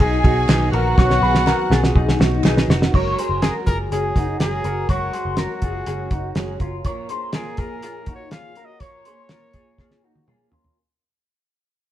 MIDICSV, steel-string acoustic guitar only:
0, 0, Header, 1, 2, 480
1, 0, Start_track
1, 0, Tempo, 489396
1, 960, Time_signature, 4, 2, 24, 8
1, 11681, End_track
2, 0, Start_track
2, 0, Title_t, "Steel-string acoustic guitar"
2, 0, Program_c, 0, 25
2, 0, Note_on_c, 0, 54, 44
2, 0, Note_on_c, 0, 59, 49
2, 0, Note_on_c, 0, 66, 53
2, 228, Note_off_c, 0, 66, 0
2, 230, Note_off_c, 0, 59, 0
2, 232, Note_on_c, 0, 66, 58
2, 242, Note_on_c, 0, 59, 56
2, 251, Note_off_c, 0, 54, 0
2, 255, Note_on_c, 0, 54, 54
2, 470, Note_off_c, 0, 54, 0
2, 475, Note_on_c, 0, 51, 55
2, 476, Note_off_c, 0, 66, 0
2, 477, Note_off_c, 0, 59, 0
2, 481, Note_on_c, 0, 54, 61
2, 489, Note_on_c, 0, 59, 65
2, 497, Note_on_c, 0, 66, 69
2, 948, Note_off_c, 0, 51, 0
2, 951, Note_on_c, 0, 47, 78
2, 954, Note_off_c, 0, 59, 0
2, 958, Note_off_c, 0, 54, 0
2, 960, Note_on_c, 0, 51, 84
2, 962, Note_on_c, 0, 54, 85
2, 965, Note_off_c, 0, 66, 0
2, 966, Note_on_c, 0, 59, 79
2, 969, Note_on_c, 0, 66, 88
2, 1415, Note_off_c, 0, 51, 0
2, 1427, Note_off_c, 0, 59, 0
2, 1427, Note_on_c, 0, 51, 57
2, 1428, Note_off_c, 0, 54, 0
2, 1432, Note_on_c, 0, 54, 74
2, 1434, Note_off_c, 0, 47, 0
2, 1439, Note_on_c, 0, 59, 61
2, 1441, Note_off_c, 0, 66, 0
2, 1445, Note_on_c, 0, 66, 68
2, 1656, Note_off_c, 0, 66, 0
2, 1666, Note_off_c, 0, 59, 0
2, 1667, Note_on_c, 0, 66, 54
2, 1672, Note_off_c, 0, 51, 0
2, 1675, Note_off_c, 0, 54, 0
2, 1678, Note_on_c, 0, 59, 56
2, 1687, Note_on_c, 0, 54, 46
2, 2143, Note_off_c, 0, 66, 0
2, 2145, Note_off_c, 0, 59, 0
2, 2147, Note_on_c, 0, 66, 64
2, 2157, Note_on_c, 0, 59, 62
2, 2165, Note_off_c, 0, 54, 0
2, 2169, Note_on_c, 0, 54, 53
2, 2391, Note_off_c, 0, 54, 0
2, 2392, Note_off_c, 0, 66, 0
2, 2392, Note_on_c, 0, 51, 63
2, 2397, Note_off_c, 0, 59, 0
2, 2403, Note_on_c, 0, 54, 72
2, 2408, Note_on_c, 0, 59, 72
2, 2415, Note_on_c, 0, 66, 73
2, 2873, Note_off_c, 0, 51, 0
2, 2877, Note_off_c, 0, 54, 0
2, 2877, Note_on_c, 0, 54, 89
2, 2879, Note_off_c, 0, 59, 0
2, 2881, Note_off_c, 0, 66, 0
2, 2881, Note_on_c, 0, 56, 82
2, 2883, Note_on_c, 0, 61, 91
2, 2885, Note_on_c, 0, 66, 90
2, 2891, Note_on_c, 0, 70, 77
2, 3101, Note_off_c, 0, 70, 0
2, 3112, Note_on_c, 0, 70, 62
2, 3116, Note_off_c, 0, 66, 0
2, 3117, Note_off_c, 0, 54, 0
2, 3119, Note_off_c, 0, 56, 0
2, 3120, Note_off_c, 0, 61, 0
2, 3127, Note_on_c, 0, 66, 48
2, 3135, Note_on_c, 0, 61, 44
2, 3350, Note_off_c, 0, 61, 0
2, 3354, Note_off_c, 0, 70, 0
2, 3355, Note_on_c, 0, 54, 67
2, 3356, Note_off_c, 0, 66, 0
2, 3360, Note_on_c, 0, 56, 54
2, 3361, Note_on_c, 0, 61, 60
2, 3368, Note_on_c, 0, 66, 69
2, 3368, Note_on_c, 0, 70, 60
2, 3825, Note_off_c, 0, 56, 0
2, 3836, Note_off_c, 0, 54, 0
2, 3836, Note_on_c, 0, 56, 64
2, 3842, Note_off_c, 0, 66, 0
2, 3844, Note_off_c, 0, 61, 0
2, 3848, Note_on_c, 0, 61, 66
2, 3853, Note_on_c, 0, 66, 68
2, 3857, Note_off_c, 0, 70, 0
2, 3861, Note_on_c, 0, 70, 67
2, 4066, Note_off_c, 0, 70, 0
2, 4073, Note_off_c, 0, 66, 0
2, 4076, Note_off_c, 0, 56, 0
2, 4077, Note_on_c, 0, 70, 53
2, 4082, Note_off_c, 0, 61, 0
2, 4085, Note_on_c, 0, 66, 47
2, 4095, Note_on_c, 0, 61, 41
2, 4310, Note_off_c, 0, 61, 0
2, 4313, Note_off_c, 0, 66, 0
2, 4315, Note_off_c, 0, 70, 0
2, 4316, Note_on_c, 0, 54, 65
2, 4322, Note_on_c, 0, 56, 69
2, 4322, Note_on_c, 0, 61, 75
2, 4325, Note_on_c, 0, 66, 80
2, 4326, Note_on_c, 0, 70, 84
2, 4542, Note_off_c, 0, 70, 0
2, 4553, Note_on_c, 0, 70, 54
2, 4555, Note_off_c, 0, 66, 0
2, 4556, Note_off_c, 0, 54, 0
2, 4559, Note_off_c, 0, 56, 0
2, 4559, Note_off_c, 0, 61, 0
2, 4580, Note_on_c, 0, 61, 38
2, 4792, Note_off_c, 0, 61, 0
2, 4795, Note_off_c, 0, 70, 0
2, 4798, Note_on_c, 0, 54, 70
2, 4802, Note_on_c, 0, 56, 75
2, 4803, Note_on_c, 0, 61, 67
2, 4807, Note_on_c, 0, 66, 77
2, 4813, Note_on_c, 0, 70, 72
2, 5023, Note_off_c, 0, 70, 0
2, 5033, Note_off_c, 0, 66, 0
2, 5035, Note_on_c, 0, 70, 46
2, 5038, Note_off_c, 0, 54, 0
2, 5040, Note_off_c, 0, 56, 0
2, 5040, Note_off_c, 0, 61, 0
2, 5045, Note_on_c, 0, 66, 45
2, 5054, Note_on_c, 0, 61, 40
2, 5276, Note_off_c, 0, 70, 0
2, 5277, Note_off_c, 0, 61, 0
2, 5278, Note_on_c, 0, 54, 63
2, 5281, Note_off_c, 0, 66, 0
2, 5286, Note_on_c, 0, 56, 67
2, 5288, Note_on_c, 0, 61, 70
2, 5292, Note_on_c, 0, 66, 61
2, 5293, Note_on_c, 0, 70, 75
2, 5740, Note_off_c, 0, 56, 0
2, 5752, Note_on_c, 0, 56, 52
2, 5757, Note_off_c, 0, 61, 0
2, 5757, Note_off_c, 0, 66, 0
2, 5758, Note_off_c, 0, 54, 0
2, 5761, Note_on_c, 0, 61, 60
2, 5769, Note_on_c, 0, 66, 61
2, 5771, Note_off_c, 0, 70, 0
2, 5775, Note_on_c, 0, 70, 59
2, 5988, Note_off_c, 0, 70, 0
2, 5995, Note_off_c, 0, 56, 0
2, 5997, Note_off_c, 0, 66, 0
2, 5999, Note_off_c, 0, 61, 0
2, 6000, Note_on_c, 0, 70, 61
2, 6009, Note_on_c, 0, 66, 47
2, 6018, Note_on_c, 0, 61, 47
2, 6229, Note_off_c, 0, 61, 0
2, 6233, Note_on_c, 0, 54, 71
2, 6235, Note_off_c, 0, 66, 0
2, 6239, Note_off_c, 0, 70, 0
2, 6240, Note_on_c, 0, 56, 82
2, 6241, Note_on_c, 0, 61, 69
2, 6246, Note_on_c, 0, 66, 81
2, 6249, Note_on_c, 0, 70, 87
2, 6455, Note_off_c, 0, 70, 0
2, 6466, Note_on_c, 0, 70, 53
2, 6469, Note_off_c, 0, 66, 0
2, 6476, Note_off_c, 0, 54, 0
2, 6479, Note_off_c, 0, 56, 0
2, 6480, Note_off_c, 0, 61, 0
2, 6481, Note_on_c, 0, 66, 45
2, 6493, Note_on_c, 0, 61, 45
2, 6712, Note_off_c, 0, 70, 0
2, 6714, Note_on_c, 0, 46, 81
2, 6715, Note_off_c, 0, 61, 0
2, 6717, Note_on_c, 0, 53, 86
2, 6720, Note_off_c, 0, 66, 0
2, 6720, Note_on_c, 0, 58, 75
2, 6725, Note_on_c, 0, 65, 80
2, 6727, Note_on_c, 0, 61, 86
2, 6728, Note_on_c, 0, 70, 84
2, 6940, Note_off_c, 0, 70, 0
2, 6951, Note_off_c, 0, 65, 0
2, 6952, Note_on_c, 0, 70, 57
2, 6955, Note_off_c, 0, 61, 0
2, 6956, Note_off_c, 0, 46, 0
2, 6958, Note_off_c, 0, 53, 0
2, 6959, Note_off_c, 0, 58, 0
2, 6963, Note_on_c, 0, 65, 52
2, 6967, Note_on_c, 0, 61, 55
2, 6973, Note_on_c, 0, 58, 43
2, 7184, Note_off_c, 0, 58, 0
2, 7187, Note_off_c, 0, 61, 0
2, 7191, Note_on_c, 0, 46, 64
2, 7194, Note_off_c, 0, 65, 0
2, 7195, Note_off_c, 0, 70, 0
2, 7196, Note_on_c, 0, 53, 66
2, 7196, Note_on_c, 0, 58, 59
2, 7199, Note_on_c, 0, 61, 62
2, 7206, Note_on_c, 0, 65, 67
2, 7208, Note_on_c, 0, 70, 65
2, 7672, Note_off_c, 0, 58, 0
2, 7676, Note_on_c, 0, 58, 55
2, 7680, Note_off_c, 0, 61, 0
2, 7684, Note_on_c, 0, 61, 58
2, 7689, Note_off_c, 0, 65, 0
2, 7693, Note_off_c, 0, 70, 0
2, 7693, Note_on_c, 0, 65, 68
2, 7697, Note_on_c, 0, 70, 59
2, 7910, Note_off_c, 0, 70, 0
2, 7918, Note_off_c, 0, 58, 0
2, 7921, Note_off_c, 0, 65, 0
2, 7922, Note_off_c, 0, 61, 0
2, 7922, Note_on_c, 0, 70, 52
2, 7933, Note_on_c, 0, 65, 51
2, 7937, Note_on_c, 0, 61, 43
2, 7946, Note_on_c, 0, 58, 42
2, 8147, Note_off_c, 0, 58, 0
2, 8148, Note_off_c, 0, 46, 0
2, 8148, Note_off_c, 0, 61, 0
2, 8152, Note_on_c, 0, 46, 67
2, 8155, Note_off_c, 0, 53, 0
2, 8155, Note_off_c, 0, 65, 0
2, 8158, Note_on_c, 0, 53, 66
2, 8159, Note_on_c, 0, 58, 62
2, 8159, Note_on_c, 0, 61, 63
2, 8161, Note_off_c, 0, 70, 0
2, 8166, Note_on_c, 0, 65, 64
2, 8171, Note_on_c, 0, 70, 71
2, 8388, Note_off_c, 0, 70, 0
2, 8396, Note_off_c, 0, 46, 0
2, 8398, Note_off_c, 0, 65, 0
2, 8399, Note_off_c, 0, 53, 0
2, 8399, Note_off_c, 0, 58, 0
2, 8399, Note_off_c, 0, 61, 0
2, 8400, Note_on_c, 0, 70, 50
2, 8410, Note_on_c, 0, 65, 42
2, 8414, Note_on_c, 0, 61, 41
2, 8421, Note_on_c, 0, 58, 38
2, 8633, Note_off_c, 0, 58, 0
2, 8634, Note_off_c, 0, 61, 0
2, 8634, Note_on_c, 0, 46, 58
2, 8639, Note_off_c, 0, 65, 0
2, 8640, Note_off_c, 0, 70, 0
2, 8641, Note_on_c, 0, 53, 63
2, 8645, Note_on_c, 0, 58, 72
2, 8645, Note_on_c, 0, 61, 80
2, 8651, Note_on_c, 0, 65, 80
2, 8652, Note_on_c, 0, 70, 78
2, 8862, Note_off_c, 0, 70, 0
2, 8869, Note_off_c, 0, 65, 0
2, 8874, Note_on_c, 0, 70, 48
2, 8876, Note_off_c, 0, 61, 0
2, 8877, Note_off_c, 0, 46, 0
2, 8880, Note_off_c, 0, 53, 0
2, 8880, Note_on_c, 0, 65, 41
2, 8882, Note_off_c, 0, 58, 0
2, 8888, Note_on_c, 0, 61, 42
2, 8897, Note_on_c, 0, 58, 40
2, 9111, Note_off_c, 0, 61, 0
2, 9113, Note_off_c, 0, 58, 0
2, 9114, Note_off_c, 0, 65, 0
2, 9114, Note_on_c, 0, 46, 61
2, 9117, Note_off_c, 0, 70, 0
2, 9119, Note_on_c, 0, 53, 60
2, 9123, Note_on_c, 0, 61, 58
2, 9125, Note_on_c, 0, 58, 67
2, 9126, Note_on_c, 0, 65, 61
2, 9128, Note_on_c, 0, 70, 73
2, 9586, Note_off_c, 0, 58, 0
2, 9590, Note_on_c, 0, 58, 63
2, 9596, Note_off_c, 0, 61, 0
2, 9600, Note_on_c, 0, 61, 62
2, 9605, Note_off_c, 0, 65, 0
2, 9609, Note_off_c, 0, 70, 0
2, 9609, Note_on_c, 0, 65, 62
2, 9612, Note_on_c, 0, 70, 69
2, 9822, Note_off_c, 0, 70, 0
2, 9834, Note_off_c, 0, 65, 0
2, 9834, Note_on_c, 0, 70, 49
2, 9835, Note_off_c, 0, 58, 0
2, 9840, Note_off_c, 0, 61, 0
2, 9846, Note_on_c, 0, 65, 51
2, 9850, Note_on_c, 0, 61, 45
2, 9858, Note_on_c, 0, 58, 49
2, 10061, Note_off_c, 0, 46, 0
2, 10062, Note_off_c, 0, 58, 0
2, 10063, Note_off_c, 0, 61, 0
2, 10065, Note_on_c, 0, 46, 61
2, 10067, Note_off_c, 0, 53, 0
2, 10067, Note_off_c, 0, 70, 0
2, 10069, Note_off_c, 0, 65, 0
2, 10071, Note_on_c, 0, 53, 72
2, 10074, Note_on_c, 0, 58, 71
2, 10075, Note_on_c, 0, 61, 74
2, 10079, Note_on_c, 0, 70, 75
2, 10081, Note_on_c, 0, 65, 73
2, 10295, Note_off_c, 0, 70, 0
2, 10306, Note_off_c, 0, 65, 0
2, 10307, Note_on_c, 0, 70, 52
2, 10312, Note_off_c, 0, 61, 0
2, 10313, Note_off_c, 0, 46, 0
2, 10316, Note_off_c, 0, 53, 0
2, 10317, Note_off_c, 0, 58, 0
2, 10318, Note_on_c, 0, 65, 48
2, 10324, Note_on_c, 0, 61, 39
2, 10330, Note_on_c, 0, 58, 38
2, 10554, Note_off_c, 0, 70, 0
2, 10559, Note_off_c, 0, 65, 0
2, 10562, Note_off_c, 0, 61, 0
2, 10565, Note_off_c, 0, 58, 0
2, 11681, End_track
0, 0, End_of_file